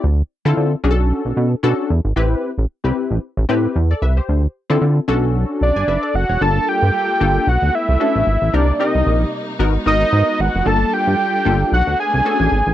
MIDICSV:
0, 0, Header, 1, 5, 480
1, 0, Start_track
1, 0, Tempo, 530973
1, 38, Time_signature, 4, 2, 24, 8
1, 11516, End_track
2, 0, Start_track
2, 0, Title_t, "Analog synth lead"
2, 0, Program_c, 0, 81
2, 5084, Note_on_c, 0, 74, 89
2, 5563, Note_on_c, 0, 78, 101
2, 5576, Note_off_c, 0, 74, 0
2, 5805, Note_on_c, 0, 81, 115
2, 5818, Note_off_c, 0, 78, 0
2, 6045, Note_on_c, 0, 79, 109
2, 6058, Note_off_c, 0, 81, 0
2, 6767, Note_on_c, 0, 78, 103
2, 6781, Note_off_c, 0, 79, 0
2, 7006, Note_on_c, 0, 76, 100
2, 7019, Note_off_c, 0, 78, 0
2, 7724, Note_on_c, 0, 74, 96
2, 7737, Note_off_c, 0, 76, 0
2, 7957, Note_off_c, 0, 74, 0
2, 7962, Note_on_c, 0, 75, 84
2, 8407, Note_off_c, 0, 75, 0
2, 8924, Note_on_c, 0, 75, 100
2, 9407, Note_on_c, 0, 78, 105
2, 9420, Note_off_c, 0, 75, 0
2, 9646, Note_on_c, 0, 81, 114
2, 9660, Note_off_c, 0, 78, 0
2, 9885, Note_on_c, 0, 79, 115
2, 9899, Note_off_c, 0, 81, 0
2, 10601, Note_off_c, 0, 79, 0
2, 10608, Note_on_c, 0, 78, 98
2, 10826, Note_off_c, 0, 78, 0
2, 10847, Note_on_c, 0, 80, 109
2, 11516, Note_off_c, 0, 80, 0
2, 11516, End_track
3, 0, Start_track
3, 0, Title_t, "Analog polysynth"
3, 0, Program_c, 1, 90
3, 408, Note_on_c, 1, 60, 99
3, 409, Note_on_c, 1, 64, 89
3, 413, Note_on_c, 1, 65, 92
3, 414, Note_on_c, 1, 69, 106
3, 650, Note_off_c, 1, 60, 0
3, 651, Note_off_c, 1, 64, 0
3, 652, Note_off_c, 1, 65, 0
3, 653, Note_off_c, 1, 69, 0
3, 756, Note_on_c, 1, 61, 104
3, 757, Note_on_c, 1, 62, 88
3, 758, Note_on_c, 1, 66, 90
3, 762, Note_on_c, 1, 68, 93
3, 820, Note_on_c, 1, 69, 112
3, 824, Note_off_c, 1, 68, 0
3, 1344, Note_off_c, 1, 61, 0
3, 1345, Note_off_c, 1, 62, 0
3, 1346, Note_off_c, 1, 66, 0
3, 1376, Note_off_c, 1, 69, 0
3, 1473, Note_on_c, 1, 61, 102
3, 1476, Note_on_c, 1, 62, 99
3, 1478, Note_on_c, 1, 66, 104
3, 1480, Note_on_c, 1, 69, 120
3, 1715, Note_off_c, 1, 61, 0
3, 1717, Note_off_c, 1, 62, 0
3, 1718, Note_off_c, 1, 66, 0
3, 1719, Note_off_c, 1, 69, 0
3, 1953, Note_on_c, 1, 60, 91
3, 1954, Note_on_c, 1, 64, 90
3, 1959, Note_on_c, 1, 67, 84
3, 1961, Note_on_c, 1, 71, 104
3, 2262, Note_off_c, 1, 60, 0
3, 2263, Note_off_c, 1, 64, 0
3, 2265, Note_off_c, 1, 67, 0
3, 2266, Note_off_c, 1, 71, 0
3, 2566, Note_on_c, 1, 60, 76
3, 2570, Note_on_c, 1, 64, 76
3, 2572, Note_on_c, 1, 67, 74
3, 2573, Note_on_c, 1, 71, 87
3, 2862, Note_off_c, 1, 60, 0
3, 2864, Note_off_c, 1, 64, 0
3, 2865, Note_off_c, 1, 67, 0
3, 2865, Note_off_c, 1, 71, 0
3, 3153, Note_on_c, 1, 60, 104
3, 3156, Note_on_c, 1, 64, 85
3, 3158, Note_on_c, 1, 67, 90
3, 3160, Note_on_c, 1, 71, 103
3, 3395, Note_off_c, 1, 60, 0
3, 3397, Note_off_c, 1, 64, 0
3, 3398, Note_off_c, 1, 67, 0
3, 3399, Note_off_c, 1, 71, 0
3, 3532, Note_on_c, 1, 74, 68
3, 3537, Note_on_c, 1, 69, 56
3, 3632, Note_off_c, 1, 74, 0
3, 3635, Note_off_c, 1, 69, 0
3, 3635, Note_on_c, 1, 76, 73
3, 3641, Note_on_c, 1, 71, 61
3, 3764, Note_off_c, 1, 76, 0
3, 3767, Note_off_c, 1, 71, 0
3, 3770, Note_on_c, 1, 72, 61
3, 3776, Note_on_c, 1, 67, 53
3, 3999, Note_off_c, 1, 72, 0
3, 4002, Note_off_c, 1, 67, 0
3, 4245, Note_on_c, 1, 60, 101
3, 4247, Note_on_c, 1, 64, 93
3, 4250, Note_on_c, 1, 65, 86
3, 4253, Note_on_c, 1, 69, 106
3, 4489, Note_off_c, 1, 60, 0
3, 4489, Note_off_c, 1, 64, 0
3, 4491, Note_off_c, 1, 65, 0
3, 4493, Note_off_c, 1, 69, 0
3, 4591, Note_on_c, 1, 61, 100
3, 4593, Note_on_c, 1, 62, 92
3, 4595, Note_on_c, 1, 66, 98
3, 4598, Note_on_c, 1, 69, 116
3, 5078, Note_off_c, 1, 69, 0
3, 5182, Note_off_c, 1, 61, 0
3, 5183, Note_off_c, 1, 62, 0
3, 5184, Note_off_c, 1, 66, 0
3, 5210, Note_on_c, 1, 80, 70
3, 5215, Note_on_c, 1, 74, 54
3, 5311, Note_off_c, 1, 80, 0
3, 5314, Note_off_c, 1, 74, 0
3, 5316, Note_on_c, 1, 76, 70
3, 5322, Note_on_c, 1, 71, 65
3, 5444, Note_off_c, 1, 76, 0
3, 5447, Note_off_c, 1, 71, 0
3, 5448, Note_on_c, 1, 74, 77
3, 5453, Note_on_c, 1, 69, 63
3, 5678, Note_off_c, 1, 74, 0
3, 5681, Note_off_c, 1, 69, 0
3, 5689, Note_on_c, 1, 73, 62
3, 5693, Note_on_c, 1, 68, 49
3, 5793, Note_on_c, 1, 58, 70
3, 5795, Note_on_c, 1, 62, 73
3, 5798, Note_on_c, 1, 65, 71
3, 5802, Note_on_c, 1, 69, 88
3, 5918, Note_off_c, 1, 73, 0
3, 5920, Note_off_c, 1, 68, 0
3, 6170, Note_off_c, 1, 58, 0
3, 6171, Note_off_c, 1, 62, 0
3, 6172, Note_off_c, 1, 65, 0
3, 6174, Note_off_c, 1, 69, 0
3, 6511, Note_on_c, 1, 58, 84
3, 6513, Note_on_c, 1, 62, 81
3, 6516, Note_on_c, 1, 65, 78
3, 6518, Note_on_c, 1, 69, 95
3, 6755, Note_off_c, 1, 58, 0
3, 6755, Note_off_c, 1, 62, 0
3, 6757, Note_off_c, 1, 65, 0
3, 6758, Note_off_c, 1, 69, 0
3, 7231, Note_on_c, 1, 61, 79
3, 7234, Note_on_c, 1, 62, 70
3, 7236, Note_on_c, 1, 66, 69
3, 7240, Note_on_c, 1, 69, 87
3, 7474, Note_off_c, 1, 61, 0
3, 7476, Note_off_c, 1, 62, 0
3, 7477, Note_off_c, 1, 66, 0
3, 7479, Note_off_c, 1, 69, 0
3, 7714, Note_on_c, 1, 62, 84
3, 7716, Note_on_c, 1, 63, 72
3, 7716, Note_on_c, 1, 67, 77
3, 7721, Note_on_c, 1, 70, 92
3, 7841, Note_off_c, 1, 62, 0
3, 7842, Note_off_c, 1, 63, 0
3, 7843, Note_off_c, 1, 67, 0
3, 7847, Note_off_c, 1, 70, 0
3, 7951, Note_on_c, 1, 60, 81
3, 7954, Note_on_c, 1, 63, 72
3, 7956, Note_on_c, 1, 67, 75
3, 7960, Note_on_c, 1, 70, 94
3, 8329, Note_off_c, 1, 60, 0
3, 8330, Note_off_c, 1, 63, 0
3, 8331, Note_off_c, 1, 67, 0
3, 8333, Note_off_c, 1, 70, 0
3, 8672, Note_on_c, 1, 59, 101
3, 8674, Note_on_c, 1, 63, 93
3, 8676, Note_on_c, 1, 66, 91
3, 8678, Note_on_c, 1, 70, 106
3, 8798, Note_off_c, 1, 59, 0
3, 8800, Note_off_c, 1, 63, 0
3, 8803, Note_off_c, 1, 66, 0
3, 8804, Note_off_c, 1, 70, 0
3, 8911, Note_on_c, 1, 59, 71
3, 8914, Note_on_c, 1, 63, 74
3, 8914, Note_on_c, 1, 66, 68
3, 8918, Note_on_c, 1, 70, 86
3, 9289, Note_off_c, 1, 59, 0
3, 9290, Note_off_c, 1, 63, 0
3, 9290, Note_off_c, 1, 66, 0
3, 9292, Note_off_c, 1, 70, 0
3, 9629, Note_on_c, 1, 58, 74
3, 9632, Note_on_c, 1, 62, 67
3, 9635, Note_on_c, 1, 65, 69
3, 9636, Note_on_c, 1, 69, 83
3, 10008, Note_off_c, 1, 58, 0
3, 10009, Note_off_c, 1, 62, 0
3, 10011, Note_off_c, 1, 65, 0
3, 10011, Note_off_c, 1, 69, 0
3, 10352, Note_on_c, 1, 58, 89
3, 10355, Note_on_c, 1, 62, 82
3, 10358, Note_on_c, 1, 65, 80
3, 10359, Note_on_c, 1, 69, 93
3, 10595, Note_off_c, 1, 58, 0
3, 10596, Note_off_c, 1, 62, 0
3, 10598, Note_off_c, 1, 65, 0
3, 10599, Note_off_c, 1, 69, 0
3, 11075, Note_on_c, 1, 61, 82
3, 11077, Note_on_c, 1, 62, 75
3, 11079, Note_on_c, 1, 66, 69
3, 11082, Note_on_c, 1, 69, 92
3, 11316, Note_off_c, 1, 61, 0
3, 11317, Note_off_c, 1, 62, 0
3, 11318, Note_off_c, 1, 66, 0
3, 11320, Note_off_c, 1, 69, 0
3, 11516, End_track
4, 0, Start_track
4, 0, Title_t, "String section"
4, 0, Program_c, 2, 48
4, 5797, Note_on_c, 2, 55, 76
4, 5797, Note_on_c, 2, 69, 74
4, 5798, Note_on_c, 2, 58, 83
4, 5798, Note_on_c, 2, 65, 68
4, 6747, Note_off_c, 2, 55, 0
4, 6748, Note_off_c, 2, 58, 0
4, 6748, Note_off_c, 2, 65, 0
4, 6748, Note_off_c, 2, 69, 0
4, 6756, Note_on_c, 2, 57, 86
4, 6757, Note_on_c, 2, 59, 77
4, 7707, Note_off_c, 2, 57, 0
4, 7708, Note_off_c, 2, 59, 0
4, 7717, Note_on_c, 2, 48, 75
4, 7718, Note_on_c, 2, 58, 72
4, 7720, Note_on_c, 2, 55, 72
4, 7720, Note_on_c, 2, 63, 88
4, 8668, Note_off_c, 2, 48, 0
4, 8668, Note_off_c, 2, 58, 0
4, 8669, Note_off_c, 2, 55, 0
4, 8676, Note_on_c, 2, 66, 79
4, 8678, Note_on_c, 2, 56, 76
4, 8678, Note_on_c, 2, 59, 92
4, 9620, Note_off_c, 2, 63, 0
4, 9627, Note_off_c, 2, 66, 0
4, 9628, Note_off_c, 2, 56, 0
4, 9628, Note_off_c, 2, 59, 0
4, 9640, Note_on_c, 2, 65, 73
4, 9641, Note_on_c, 2, 55, 79
4, 9641, Note_on_c, 2, 62, 71
4, 9641, Note_on_c, 2, 69, 72
4, 10589, Note_off_c, 2, 55, 0
4, 10589, Note_off_c, 2, 65, 0
4, 10590, Note_off_c, 2, 62, 0
4, 10590, Note_off_c, 2, 69, 0
4, 10599, Note_on_c, 2, 57, 82
4, 10600, Note_on_c, 2, 59, 75
4, 10600, Note_on_c, 2, 62, 90
4, 11516, Note_off_c, 2, 57, 0
4, 11516, Note_off_c, 2, 59, 0
4, 11516, Note_off_c, 2, 62, 0
4, 11516, End_track
5, 0, Start_track
5, 0, Title_t, "Analog synth bass"
5, 0, Program_c, 3, 38
5, 35, Note_on_c, 3, 38, 114
5, 202, Note_off_c, 3, 38, 0
5, 411, Note_on_c, 3, 50, 93
5, 484, Note_off_c, 3, 50, 0
5, 516, Note_on_c, 3, 50, 107
5, 683, Note_off_c, 3, 50, 0
5, 757, Note_on_c, 3, 35, 99
5, 1016, Note_off_c, 3, 35, 0
5, 1132, Note_on_c, 3, 35, 98
5, 1205, Note_off_c, 3, 35, 0
5, 1236, Note_on_c, 3, 47, 100
5, 1402, Note_off_c, 3, 47, 0
5, 1478, Note_on_c, 3, 47, 109
5, 1570, Note_off_c, 3, 47, 0
5, 1719, Note_on_c, 3, 40, 95
5, 1811, Note_off_c, 3, 40, 0
5, 1850, Note_on_c, 3, 32, 86
5, 1924, Note_off_c, 3, 32, 0
5, 1957, Note_on_c, 3, 33, 109
5, 2123, Note_off_c, 3, 33, 0
5, 2330, Note_on_c, 3, 33, 94
5, 2404, Note_off_c, 3, 33, 0
5, 2569, Note_on_c, 3, 36, 91
5, 2643, Note_off_c, 3, 36, 0
5, 2808, Note_on_c, 3, 33, 81
5, 2882, Note_off_c, 3, 33, 0
5, 3049, Note_on_c, 3, 33, 104
5, 3123, Note_off_c, 3, 33, 0
5, 3156, Note_on_c, 3, 45, 98
5, 3322, Note_off_c, 3, 45, 0
5, 3396, Note_on_c, 3, 40, 95
5, 3562, Note_off_c, 3, 40, 0
5, 3633, Note_on_c, 3, 36, 85
5, 3800, Note_off_c, 3, 36, 0
5, 3875, Note_on_c, 3, 38, 100
5, 4042, Note_off_c, 3, 38, 0
5, 4250, Note_on_c, 3, 50, 98
5, 4323, Note_off_c, 3, 50, 0
5, 4353, Note_on_c, 3, 50, 101
5, 4520, Note_off_c, 3, 50, 0
5, 4594, Note_on_c, 3, 35, 99
5, 4927, Note_off_c, 3, 35, 0
5, 5075, Note_on_c, 3, 35, 87
5, 5169, Note_off_c, 3, 35, 0
5, 5207, Note_on_c, 3, 31, 84
5, 5282, Note_off_c, 3, 31, 0
5, 5312, Note_on_c, 3, 30, 88
5, 5407, Note_off_c, 3, 30, 0
5, 5553, Note_on_c, 3, 30, 93
5, 5647, Note_off_c, 3, 30, 0
5, 5688, Note_on_c, 3, 28, 86
5, 5762, Note_off_c, 3, 28, 0
5, 5795, Note_on_c, 3, 31, 106
5, 5961, Note_off_c, 3, 31, 0
5, 6169, Note_on_c, 3, 43, 96
5, 6243, Note_off_c, 3, 43, 0
5, 6514, Note_on_c, 3, 31, 98
5, 6681, Note_off_c, 3, 31, 0
5, 6754, Note_on_c, 3, 35, 90
5, 6848, Note_off_c, 3, 35, 0
5, 6890, Note_on_c, 3, 38, 96
5, 6964, Note_off_c, 3, 38, 0
5, 7130, Note_on_c, 3, 36, 83
5, 7204, Note_off_c, 3, 36, 0
5, 7370, Note_on_c, 3, 33, 91
5, 7444, Note_off_c, 3, 33, 0
5, 7475, Note_on_c, 3, 32, 79
5, 7569, Note_off_c, 3, 32, 0
5, 7610, Note_on_c, 3, 33, 92
5, 7684, Note_off_c, 3, 33, 0
5, 7717, Note_on_c, 3, 36, 113
5, 7883, Note_off_c, 3, 36, 0
5, 8088, Note_on_c, 3, 36, 94
5, 8162, Note_off_c, 3, 36, 0
5, 8195, Note_on_c, 3, 34, 102
5, 8361, Note_off_c, 3, 34, 0
5, 8674, Note_on_c, 3, 32, 94
5, 8841, Note_off_c, 3, 32, 0
5, 8914, Note_on_c, 3, 32, 93
5, 9081, Note_off_c, 3, 32, 0
5, 9154, Note_on_c, 3, 44, 110
5, 9248, Note_off_c, 3, 44, 0
5, 9394, Note_on_c, 3, 32, 90
5, 9488, Note_off_c, 3, 32, 0
5, 9531, Note_on_c, 3, 29, 99
5, 9604, Note_off_c, 3, 29, 0
5, 9636, Note_on_c, 3, 31, 104
5, 9802, Note_off_c, 3, 31, 0
5, 10009, Note_on_c, 3, 43, 93
5, 10083, Note_off_c, 3, 43, 0
5, 10356, Note_on_c, 3, 31, 101
5, 10522, Note_off_c, 3, 31, 0
5, 10597, Note_on_c, 3, 35, 100
5, 10690, Note_off_c, 3, 35, 0
5, 10730, Note_on_c, 3, 38, 96
5, 10804, Note_off_c, 3, 38, 0
5, 10971, Note_on_c, 3, 36, 91
5, 11044, Note_off_c, 3, 36, 0
5, 11209, Note_on_c, 3, 33, 92
5, 11283, Note_off_c, 3, 33, 0
5, 11316, Note_on_c, 3, 32, 85
5, 11409, Note_off_c, 3, 32, 0
5, 11451, Note_on_c, 3, 33, 88
5, 11516, Note_off_c, 3, 33, 0
5, 11516, End_track
0, 0, End_of_file